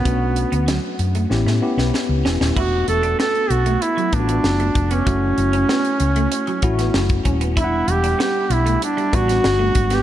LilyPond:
<<
  \new Staff \with { instrumentName = "Duduk" } { \time 4/4 \key e \dorian \tempo 4 = 96 b4. r2 r8 | fis'8 a'8 a'8 fis'8 e'8 d'4~ d'16 cis'16~ | cis'2.~ cis'8 r8 | e'8 g'8 g'8 e'8 d'8 fis'4~ fis'16 g'16 | }
  \new Staff \with { instrumentName = "Tine electric piano" } { \time 4/4 \key e \dorian <a cis' d' fis'>2 <b cis' e' g'>8 <b cis' e' g'>4. | <a b d' fis'>2 r8 <a b d' eis' fis'>4. | <a cis' e' fis'>2 r8 <a cis' e' fis'>4. | <g b d' e' fis''>2 r8 <g b d' fis'>4. | }
  \new Staff \with { instrumentName = "Clean electric guitar" } { \time 4/4 \key e \dorian b16 r8 b16 fis16 r8 a16 r16 a16 r16 b16 r8 cis'16 cis'16 | e'16 r8 d'16 b16 r8 a16 r16 fis16 r16 b16 r16 a16 r16 b16 | fis16 r8 cis'16 b16 r8 a16 r16 fis16 r16 b16 r8 cis'16 b16 | e'16 r8 d'16 b16 r8 a16 r16 g16 r16 b16 r16 a16 r16 b16 | }
  \new Staff \with { instrumentName = "Fingered electric bass" } { \clef bass \time 4/4 \key e \dorian b,,8. d,8 r16 fis,8 a,,16 a,16 r16 b,,16 r16 cis,16 e,,16 dis,,16 | e,,8 e,,8 r8 b,,8 r8 a,,8 fis,,8 eis,,8 | fis,,8 fis,,8 r8 cis,8 r8 a,,8 fis,,8 dis,,8 | e,,8 e,,8 r8 b,,8 r8 a,,8 g,,8 gis,,8 | }
  \new DrumStaff \with { instrumentName = "Drums" } \drummode { \time 4/4 <hh bd>8 hh16 hh16 <hh sn>8 hh16 hh16 sn16 sn8 sn16 sn8 sn16 sn16 | <cymc bd>8 hh16 hh16 sn16 hh16 hh16 hh16 hh16 hh16 <hh bd>16 hh16 sn16 hh16 <hh bd>16 hh16 | <hh bd>8 hh16 hh16 sn16 hh16 hh16 hh16 hh16 hh16 <hh bd>16 <hh sn>16 sn16 <hh bd>16 <hh bd>16 hh16 | <hh bd>8 hh16 hh16 sn8 hh16 hh16 hh16 hh16 <hh bd>16 <hh sn>16 sn8 <hh bd>16 <hh sn>16 | }
>>